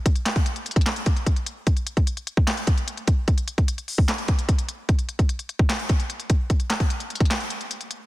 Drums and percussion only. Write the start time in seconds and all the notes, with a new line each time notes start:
0.06 kick, closed hi-hat
0.16 closed hi-hat
0.26 snare, clap, closed hi-hat
0.36 kick, closed hi-hat
0.46 closed hi-hat
0.56 closed hi-hat
0.66 closed hi-hat, open hi-hat
0.71 closed hi-hat
0.76 kick, closed hi-hat
0.81 closed hi-hat
0.86 snare, clap, closed hi-hat
0.96 closed hi-hat
1.06 kick, closed hi-hat
1.17 closed hi-hat
1.26 kick, closed hi-hat
1.36 closed hi-hat
1.46 closed hi-hat
1.67 kick, closed hi-hat
1.77 closed hi-hat
1.87 closed hi-hat
1.97 kick, closed hi-hat
2.07 closed hi-hat
2.17 closed hi-hat
2.27 closed hi-hat
2.37 kick
2.47 snare, clap, closed hi-hat
2.57 closed hi-hat
2.67 kick, closed hi-hat
2.78 closed hi-hat
2.88 closed hi-hat
2.97 closed hi-hat
3.07 kick, closed hi-hat
3.28 kick, closed hi-hat
3.38 closed hi-hat
3.48 closed hi-hat
3.58 kick, closed hi-hat
3.68 closed hi-hat
3.78 closed hi-hat
3.88 open hi-hat
3.98 kick
4.08 snare, clap, closed hi-hat
4.18 closed hi-hat
4.28 kick, closed hi-hat
4.39 closed hi-hat
4.49 kick, closed hi-hat
4.59 closed hi-hat
4.69 closed hi-hat
4.89 kick, closed hi-hat
4.99 closed hi-hat
5.09 closed hi-hat
5.19 kick, closed hi-hat
5.29 closed hi-hat
5.39 closed hi-hat
5.49 closed hi-hat
5.59 kick
5.69 snare, clap, closed hi-hat
5.79 closed hi-hat
5.89 kick, closed hi-hat
6.00 closed hi-hat
6.10 closed hi-hat
6.20 closed hi-hat
6.30 kick, closed hi-hat
6.50 kick, closed hi-hat
6.60 closed hi-hat
6.70 snare, clap, closed hi-hat
6.80 kick, closed hi-hat
6.90 closed hi-hat
7.00 closed hi-hat
7.10 closed hi-hat, open hi-hat
7.15 closed hi-hat
7.20 kick, closed hi-hat
7.25 closed hi-hat
7.30 snare, clap, closed hi-hat
7.40 closed hi-hat
7.50 closed hi-hat
7.61 closed hi-hat
7.71 closed hi-hat
7.81 closed hi-hat
7.91 closed hi-hat